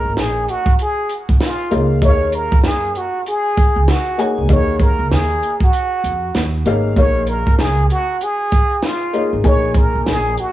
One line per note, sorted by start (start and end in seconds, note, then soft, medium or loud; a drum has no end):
0.00 0.56 A#3 medium
0.00 0.56 D#4 medium
0.00 0.56 G#4 medium
0.00 0.21 A#4 medium
0.00 0.56 C#5 medium
0.00 0.56 D#5 medium
0.05 0.17 G#1 medium
0.17 0.44 A#1 medium
0.17 0.52 G#4 medium
0.17 snare loud
0.17 closed hi-hat medium
0.49 0.80 F#4 medium
0.49 closed hi-hat medium
0.66 kick medium
0.79 1.13 G#4 medium
0.79 closed hi-hat medium
1.09 closed hi-hat medium
1.29 1.39 B1 medium
1.29 kick medium
1.40 1.88 F4 medium
1.40 snare loud
1.40 closed hi-hat loud
1.70 1.99 C#2 medium
1.70 1.97 A#3 medium
1.70 1.97 D#4 medium
1.70 1.97 G#4 medium
1.70 1.98 C#5 medium
1.70 1.98 F5 medium
1.70 closed hi-hat medium
2.01 2.46 D#2 medium
2.01 3.03 A#3 medium
2.01 3.03 D#4 medium
2.01 3.03 G#4 medium
2.01 3.03 C#5 medium
2.01 2.36 C#5 medium
2.01 2.10 E5 medium
2.01 kick medium
2.01 closed hi-hat medium
2.09 3.07 F5 medium
2.32 2.65 A#4 medium
2.32 closed hi-hat medium
2.52 2.63 A#2 medium
2.52 kick medium
2.63 2.91 F#2 medium
2.63 2.98 G#4 medium
2.63 snare loud
2.63 closed hi-hat medium
2.95 3.27 F#4 medium
2.95 closed hi-hat medium
3.26 3.92 G#4 medium
3.26 closed hi-hat medium
3.57 kick loud
3.57 closed hi-hat medium
3.76 3.86 C#2 medium
3.88 4.39 F#4 medium
3.88 snare loud
3.88 closed hi-hat loud
4.18 4.44 A#3 medium
4.18 4.45 D#4 medium
4.18 4.45 G#4 medium
4.18 4.45 C#5 medium
4.18 4.45 G#5 medium
4.18 closed hi-hat medium
4.38 4.48 C#2 medium
4.48 4.93 D#2 medium
4.48 5.50 A#3 medium
4.48 5.50 D#4 medium
4.48 5.50 G#4 medium
4.48 5.51 C#5 medium
4.48 4.84 C#5 medium
4.48 5.51 F5 medium
4.48 kick loud
4.48 closed hi-hat medium
4.80 5.14 A#4 medium
4.80 kick medium
4.80 closed hi-hat medium
4.99 5.10 C#2 medium
5.11 5.39 D#2 medium
5.11 5.62 G#4 medium
5.11 snare loud
5.11 closed hi-hat medium
5.43 closed hi-hat medium
5.61 6.51 F#4 medium
5.61 kick medium
5.73 closed hi-hat medium
6.04 6.31 F2 medium
6.04 closed hi-hat medium
6.35 6.63 D#2 loud
6.35 snare loud
6.35 closed hi-hat loud
6.66 6.93 G#1 medium
6.66 6.92 A#3 medium
6.66 6.92 D#4 medium
6.66 6.93 G#4 medium
6.66 6.93 C#5 medium
6.66 6.93 F5 medium
6.66 closed hi-hat medium
6.96 7.41 A#1 loud
6.96 7.98 A#3 medium
6.96 7.98 D#4 medium
6.96 7.98 G#4 medium
6.96 7.99 C#5 medium
6.96 7.31 C#5 medium
6.96 7.99 F5 medium
6.96 kick loud
6.96 closed hi-hat medium
7.27 7.62 A#4 medium
7.27 closed hi-hat medium
7.47 7.60 F2 medium
7.47 kick medium
7.59 7.86 C#2 medium
7.59 7.90 G#4 medium
7.59 snare loud
7.59 closed hi-hat medium
7.90 8.25 F#4 medium
7.90 closed hi-hat medium
8.21 8.87 G#4 medium
8.21 closed hi-hat medium
8.52 kick medium
8.52 closed hi-hat medium
8.82 9.34 F4 medium
8.82 snare loud
8.82 closed hi-hat loud
9.13 9.39 A#3 medium
9.13 9.39 D#4 medium
9.13 9.40 G#4 medium
9.13 9.40 C#5 medium
9.13 9.40 D#5 medium
9.13 closed hi-hat medium
9.33 9.43 G#1 medium
9.43 9.88 A#1 medium
9.43 10.45 A#3 medium
9.43 10.45 D#4 medium
9.43 10.45 G#4 medium
9.43 10.46 C#5 medium
9.43 9.79 C#5 medium
9.43 10.46 G#5 medium
9.43 kick loud
9.43 closed hi-hat medium
9.74 10.07 A#4 medium
9.74 kick medium
9.74 closed hi-hat medium
9.95 10.05 B1 medium
10.06 10.34 A#1 medium
10.06 10.41 G#4 medium
10.06 snare loud
10.06 closed hi-hat medium
10.37 10.52 F#4 medium
10.37 closed hi-hat medium